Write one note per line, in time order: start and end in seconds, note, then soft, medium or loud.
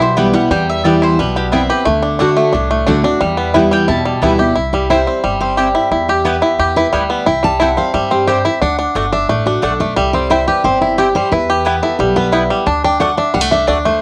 0.00 0.32 B1 medium
0.00 0.47 B2 medium
0.00 0.34 G3 medium
0.00 0.14 B3 medium
0.00 0.47 E4 medium
0.00 0.31 G4 medium
0.00 0.17 C5 medium
0.16 0.33 E3 medium
0.16 0.33 G3 medium
0.16 0.26 B3 medium
0.16 0.64 B3 medium
0.16 0.33 B3 medium
0.16 0.26 E4 medium
0.16 0.32 E4 medium
0.16 0.26 B4 medium
0.16 0.34 D5 medium
0.16 0.26 G5 medium
0.33 0.50 G3 medium
0.33 0.51 B3 medium
0.33 0.50 E4 medium
0.33 0.50 F#5 medium
0.50 0.99 E2 medium
0.50 1.15 E2 medium
0.50 0.84 G3 medium
0.50 0.68 G5 medium
0.70 0.85 E5 medium
0.84 1.16 E3 medium
0.84 1.17 G3 loud
0.84 1.18 G3 medium
0.84 0.94 B3 medium
0.84 1.17 B3 medium
0.84 0.94 E4 medium
0.84 1.17 E4 loud
0.84 0.94 B4 medium
0.84 1.02 D5 medium
0.84 0.94 G5 medium
1.02 1.49 E4 medium
1.02 1.19 C5 medium
1.18 1.67 B1 medium
1.18 1.51 B2 medium
1.18 1.66 G3 medium
1.18 1.36 B4 medium
1.36 1.83 B3 medium
1.36 1.46 G4 medium
1.52 1.61 B3 medium
1.52 1.85 C4 medium
1.52 1.61 E4 medium
1.52 1.86 E4 medium
1.52 1.62 B4 medium
1.52 1.69 E5 medium
1.52 1.62 G5 medium
1.70 1.86 G4 medium
1.70 1.86 B4 medium
1.85 2.34 D2 medium
1.85 2.19 D3 medium
1.85 2.33 A3 medium
2.03 2.18 D4 medium
2.19 2.52 D3 medium
2.19 2.29 A3 medium
2.19 2.52 A3 medium
2.19 2.51 D4 medium
2.19 2.53 D4 medium
2.19 2.29 F#4 medium
2.19 2.53 F#4 loud
2.19 2.29 D5 medium
2.19 2.29 F#5 loud
2.37 2.69 A3 medium
2.53 2.82 C2 medium
2.53 3.18 A2 medium
2.53 2.85 D4 medium
2.71 3.18 A3 medium
2.87 3.16 D2 medium
2.87 3.04 D3 medium
2.87 2.96 A3 medium
2.87 3.04 A3 loud
2.87 3.03 D4 medium
2.87 3.04 D4 medium
2.87 2.96 F#4 medium
2.87 3.02 F#4 loud
2.87 2.97 D5 medium
2.87 2.97 F#5 medium
3.03 3.21 D4 medium
3.03 3.20 F#4 medium
3.20 3.85 E2 medium
3.20 3.70 E2 medium
3.20 3.68 G3 medium
3.37 3.85 B3 medium
3.54 3.87 E3 medium
3.54 3.87 G3 medium
3.54 3.64 B3 medium
3.54 3.87 B3 medium
3.54 3.87 E4 medium
3.54 3.64 E4 medium
3.54 3.88 E4 medium
3.54 3.64 B4 medium
3.54 3.64 G5 medium
3.71 4.04 G3 medium
3.71 3.88 G5 loud
3.88 4.17 E2 medium
3.88 4.53 B2 medium
3.88 4.21 E4 medium
3.88 4.36 A5 medium
4.05 4.53 G3 medium
4.22 4.51 D2 medium
4.22 4.39 E3 medium
4.22 4.39 G3 medium
4.22 4.31 B3 medium
4.22 4.39 B3 medium
4.22 4.32 E4 medium
4.22 4.54 E4 medium
4.22 4.38 E4 loud
4.22 4.32 B4 medium
4.22 4.32 G5 medium
4.39 4.56 B3 medium
4.39 4.56 E4 medium
4.39 4.56 G4 medium
4.56 5.05 C2 medium
4.56 4.90 E4 medium
4.73 5.23 G3 medium
4.73 4.89 G4 medium
4.90 4.99 C4 medium
4.90 5.74 E4 medium
4.90 4.99 E4 medium
4.90 5.37 C5 medium
4.90 5.00 C5 medium
4.90 5.00 G5 medium
5.07 5.40 C4 medium
5.24 5.72 G1 medium
5.24 6.64 G3 medium
5.40 5.88 C4 medium
5.40 5.57 C5 loud
5.57 5.67 C4 medium
5.57 5.67 E4 medium
5.57 6.09 G4 medium
5.57 5.67 C5 medium
5.57 5.68 G5 medium
5.75 5.91 E4 medium
5.91 6.40 E2 medium
5.91 6.42 E4 medium
6.08 6.25 G4 medium
6.08 6.59 G4 medium
6.25 6.34 B3 medium
6.25 6.73 B3 medium
6.25 6.35 E4 medium
6.25 6.72 B4 medium
6.25 6.35 B4 medium
6.25 6.35 G5 loud
6.42 6.76 E4 medium
6.59 6.88 E2 medium
6.59 7.07 G4 medium
6.76 7.24 E4 medium
6.76 6.86 B4 loud
6.92 7.22 D2 medium
6.92 7.27 G3 medium
6.92 7.02 B3 medium
6.92 7.02 E4 medium
6.92 7.02 B4 medium
6.92 7.03 G5 medium
7.10 7.27 B3 medium
7.26 7.75 C2 medium
7.26 7.58 E4 medium
7.26 7.43 G5 medium
7.43 7.90 G3 medium
7.43 7.60 A5 loud
7.60 7.70 C4 medium
7.60 8.08 E4 medium
7.60 7.70 E4 medium
7.60 7.70 C5 medium
7.60 7.77 F#5 medium
7.60 7.70 G5 loud
7.77 8.10 C4 medium
7.77 7.94 F5 loud
7.94 8.43 G2 medium
7.94 8.42 G3 medium
7.94 8.11 E5 medium
8.11 8.58 C4 medium
8.11 8.28 G4 medium
8.27 8.37 C4 medium
8.27 8.37 E4 medium
8.27 8.62 G4 medium
8.27 8.44 C5 medium
8.27 8.38 C5 medium
8.27 8.38 G5 medium
8.45 8.61 E4 medium
8.45 8.61 E5 medium
8.61 8.86 D2 medium
8.61 8.77 D4 medium
8.61 9.09 F#5 loud
8.79 8.95 D4 medium
8.95 9.24 G1 medium
8.95 9.05 A3 medium
8.95 9.11 D4 medium
8.95 9.05 F#4 medium
8.95 9.05 D5 medium
8.95 9.05 F#5 medium
9.12 9.46 D4 medium
9.12 9.29 E5 loud
9.28 9.58 A1 medium
9.28 9.77 A3 medium
9.28 9.46 D5 medium
9.46 9.62 D4 medium
9.46 9.62 F#4 medium
9.62 9.92 B1 medium
9.62 9.72 A3 medium
9.62 9.97 D4 medium
9.62 9.72 F#4 medium
9.62 9.80 A4 medium
9.62 9.73 D5 medium
9.62 9.73 F#5 medium
9.80 9.96 A3 medium
9.80 9.96 D5 loud
9.97 10.45 C2 medium
9.97 11.15 G3 medium
9.97 10.13 E5 loud
10.13 10.61 C4 medium
10.13 10.30 D5 loud
10.30 10.39 C4 medium
10.30 10.40 E4 medium
10.30 10.78 E4 medium
10.30 10.47 C5 medium
10.30 10.40 C5 medium
10.30 10.40 G5 medium
10.48 10.95 G4 medium
10.48 10.64 B4 medium
10.64 11.13 G1 medium
10.64 11.12 C4 medium
10.64 10.81 C5 loud
10.81 10.97 E4 medium
10.81 11.29 E4 medium
10.98 11.07 C4 medium
10.98 11.07 E4 medium
10.98 11.15 G4 medium
10.98 11.32 G4 medium
10.98 11.08 C5 medium
10.98 11.08 G5 medium
11.15 11.32 G3 medium
11.15 11.31 C5 loud
11.31 11.80 E2 medium
11.31 11.80 E4 medium
11.31 11.79 B4 medium
11.50 11.96 G4 medium
11.65 11.74 B3 medium
11.65 12.14 B3 medium
11.65 11.75 E4 medium
11.65 11.75 B4 medium
11.65 11.75 G5 medium
11.83 12.30 E4 medium
11.83 11.99 A4 medium
11.99 12.48 B1 medium
11.99 12.47 G3 medium
11.99 12.16 G4 medium
12.16 12.64 B3 medium
12.16 12.26 B4 loud
12.32 12.42 B3 medium
12.32 12.66 E4 medium
12.32 12.42 E4 medium
12.32 12.42 B4 medium
12.32 12.42 G5 medium
12.50 12.67 G3 medium
12.66 13.15 D2 medium
12.66 12.83 D4 medium
12.66 12.83 A5 medium
12.84 13.00 D4 medium
12.84 13.00 G5 loud
13.00 13.09 A3 medium
13.00 13.17 D4 medium
13.00 13.10 F#4 medium
13.00 13.10 D5 medium
13.00 13.17 F#5 loud
13.00 13.10 F#5 medium
13.17 13.50 D4 medium
13.17 13.34 E5 loud
13.34 13.63 C2 medium
13.34 13.41 G3 medium
13.34 13.51 F#5 loud
13.41 13.68 A3 medium
13.51 13.67 D4 medium
13.51 13.68 E5 loud
13.67 13.97 D2 medium
13.67 13.77 A3 medium
13.67 14.02 D4 medium
13.67 13.77 F#4 medium
13.67 13.85 D5 medium
13.67 13.77 D5 medium
13.67 13.77 F#5 medium
13.85 14.01 A3 medium
13.85 14.02 C5 loud